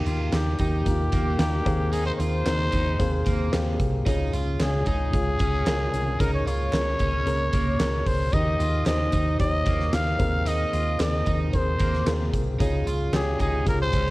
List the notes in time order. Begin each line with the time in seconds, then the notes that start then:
Already playing: D#3 A#3 D#4 G4
0.06 D#2 F4, closed hi-hat
0.32 D#2 A#3 D#4 G4, snare, clap, closed hi-hat
0.59 D#2 D#4 G4, kick, closed hi-hat
0.85 D#2 A#3 D#4 F4, kick, closed hi-hat
1.12 D#2 A#3, kick, closed hi-hat
1.39 D#2 A#3 D#4 G4, snare, clap, closed hi-hat
1.65 D#2 C3 D#3 A#3 C4 G#4, kick, closed hi-hat
1.92 D#4 G#4, closed hi-hat
2.06 C5
2.19 D#2 F4 C5, closed hi-hat
2.46 D#2 A#3 C4 D#4, snare, clap, closed hi-hat
2.72 D#2 D#4, kick, closed hi-hat
2.99 D#2 A#3 C4 G#4, kick, closed hi-hat
3.26 D#2 A#3, kick, closed hi-hat
3.52 D#2 A#3 C4 G4, snare, clap, closed hi-hat
3.60 G#4
3.80 C2, kick, closed hi-hat
4.05 C#2 C#3 G#3 C#4 D#4 F4 G#4, kick, closed hi-hat
4.33 C#2 F4, closed hi-hat
4.59 C#2 C#4 F4 G#4, snare, clap, closed hi-hat
4.86 C#2 D#4 G#4, kick, closed hi-hat
5.12 C#2 C#4 F4 G#4, kick, closed hi-hat
5.39 C#2 C#4, kick, closed hi-hat
5.66 C#2 C#4 F4 A#4, snare, clap, closed hi-hat
5.93 C2, closed hi-hat
6.19 C#2 C#3 A#3 C#4 D#4 G#4 A#4, kick, closed hi-hat
6.34 C#5
6.46 C#2 F4 C#5, closed hi-hat
6.72 C#2 C#4 G#4 A#4, snare, clap, closed hi-hat
6.99 C#2 C#4, kick, closed hi-hat
7.26 C#2 C#4 G#4 A#4, closed hi-hat
7.53 C#2 A#3, kick, closed hi-hat
7.79 C#2 C#4 G#4 A#4, snare, clap, closed hi-hat
8.06 C#2 C5, kick, open hi-hat
8.33 D#2 D#3 A#3 D#4 G4 A#4 D#5, kick, closed hi-hat
8.60 D#2 F4, closed hi-hat
8.86 D#2 D#4 G4 C5 D#5, snare, clap, closed hi-hat
9.12 D#2 D#4, kick, closed hi-hat
9.39 D#2 D#4 G4 C#5 D#5, kick, closed hi-hat
9.66 D#2 A#3, kick, closed hi-hat
9.80 snare
9.92 D#2 D#4 G4 A#4 F5, snare, clap, closed hi-hat
10.19 D#2 C3 D#3 C4 G#4 A#4, kick, closed hi-hat
10.46 D#4 D#5, closed hi-hat
10.73 D#2 F4, closed hi-hat
10.99 D#2 C4 G#4 A#4 D#5, snare, clap, closed hi-hat
11.26 D#2 D#4, kick, closed hi-hat
11.53 D#2 C4 G#4 A#4 C5, kick, closed hi-hat
11.79 D#2 A#3, kick, closed hi-hat
11.94 snare
12.06 D#2 A#3 G#4 A#4, snare, clap, closed hi-hat
12.13 C4
12.33 C2, kick, closed hi-hat
12.59 C#2 C#3 G#3 C#4 D#4 F4 G#4, kick, closed hi-hat
12.86 C#2 F4, closed hi-hat
13.12 C#2 C#4 F4 G4 G#4, snare, clap, closed hi-hat
13.40 C#2 D#4 G#4, kick, closed hi-hat
13.65 C#2 C#4 F4 G#4 A#4, kick, closed hi-hat
13.82 C5
13.93 C#2 C#4, kick, closed hi-hat
14.07 snare